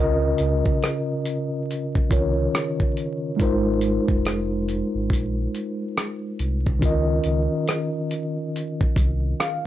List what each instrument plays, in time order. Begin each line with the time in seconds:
Already playing: sub bass C#2, tine electric piano C#3 C#4 F4 A#4
0.00 tine electric piano D#5
0.38 sub bass C#2, closed hi-hat
0.66 kick
0.82 cross-stick, closed hi-hat
1.25 closed hi-hat
1.71 closed hi-hat
1.95 kick
2.09 sub bass C2, tine electric piano D#3 C#4 F4 A#4 C#5, kick, closed hi-hat
2.55 cross-stick, closed hi-hat
2.80 kick
2.97 closed hi-hat
3.36 sub bass G#1, tine electric piano G#3 D#4 F4, kick, closed hi-hat
3.41 tine electric piano A#4 C5
3.81 closed hi-hat
4.08 sub bass F1, kick
4.25 cross-stick, closed hi-hat
4.68 closed hi-hat
4.94 sub bass G#1
5.10 sub bass A#1, kick, closed hi-hat
5.54 closed hi-hat
5.97 cross-stick, closed hi-hat
6.39 sub bass C2, closed hi-hat
6.66 kick
6.79 sub bass C#2, tine electric piano D#3 C#4 F4, kick, closed hi-hat
6.84 tine electric piano A#4 D#5
7.24 sub bass C#2, closed hi-hat
7.68 cross-stick, closed hi-hat
8.11 closed hi-hat
8.56 closed hi-hat
8.81 kick
8.96 sub bass C2, kick, closed hi-hat
9.40 tine electric piano F5, cross-stick, closed hi-hat